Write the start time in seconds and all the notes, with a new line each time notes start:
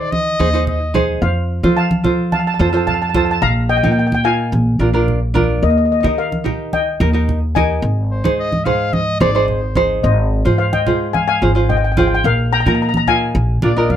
Already playing: D#3 D#4 G#4 C5 D5
0.11 D#5, high conga
0.39 D#2 D#4 G#4 C5, high conga
0.53 D#4 G#4 C5
0.67 D#5, low conga
0.94 D#4 G#4 C5, high conga, low conga
1.22 F2 C5 F5
1.63 F3 F4 A4 C5, high conga
1.77 F5 A5
1.91 high conga
2.04 F4 A4 C5, low conga
2.32 F5 A5, high conga
2.39 A5
2.47 A5
2.54 A5
2.59 F2 F4 A4 C5 A5, high conga
2.69 F4 A4 A5
2.74 C5 A5
2.87 F5 A5, low conga
2.94 A5
3.02 A5
3.09 A5
3.14 F4 A4 C5 A5, high conga, low conga
3.25 A5
3.31 A5
3.42 A#1 F5 A#5, low conga
3.69 D#5 G5
3.77 G5
3.83 A#2 D#4 F4 A#4 G5, high conga
3.92 G5
3.99 G5
4.07 G5
4.12 G5, high conga
4.24 D#4 F4 A#4 F5 G#5
4.52 A#1, high conga
4.79 A#1 D4 F4 A#4, high conga
4.93 D4 F4 A#4
5.08 low conga
5.34 D4 F4 A#4, high conga, low conga
5.63 D#2 A#4 D#5
5.70 D#5
5.78 D#5
5.85 D#5
5.92 D#5
6.01 D#3 D#4 G4 A#4 D#5, high conga
6.07 D#5
6.18 A#4 F5
6.32 high conga
6.44 D#4 G4 A#4, low conga
6.73 D#5 G5, high conga
7.00 D#2 D#4 G4 A#4, high conga
7.13 D#4 G4 A#4
7.29 low conga
7.55 D#4 G4 A#4 D#5 G#5, high conga, low conga
7.82 G#1
8.11 C5
8.24 G#2 D#4 G#4 C5, high conga
8.39 D#5
8.52 high conga
8.65 D#4 G#4 C5 F5, low conga
8.93 D#5, high conga
9.20 G#1 D#4 G#4 C5 D5, high conga
9.35 D#4 G#4 C5
9.48 C5, low conga
9.76 D#4 G#4 C5, high conga, low conga
10.03 G#1 C5 D#5
10.45 G#2 F4 G#4 C5, high conga
10.58 C5 F5
10.73 D#5 G5, high conga
10.86 F4 G#4 C5, low conga
11.13 F5 G#5, high conga
11.28 F5 G#5
11.42 G#1 F4 G#4 C5, high conga
11.55 F4 G#4 C5
11.69 D#5 G5, low conga
11.77 G5
11.84 G5
11.92 G5
11.97 F4 G#4 C5 G5, high conga, low conga
12.07 G5
12.15 G5
12.24 A#1 A#4 F5, low conga
12.53 G5 A#5
12.60 A#5
12.66 A#2 D#4 F4 A#4 A#5, high conga
12.75 A#5
12.82 A#5
12.89 A#5
12.94 A#5, high conga
13.07 D#4 F4 A#4 F5 G#5, low conga
13.35 A#1
13.62 A#1 D4 F4 A#4 D5, high conga
13.76 D4 F4 A#4 D#5
13.90 G2 F5, high conga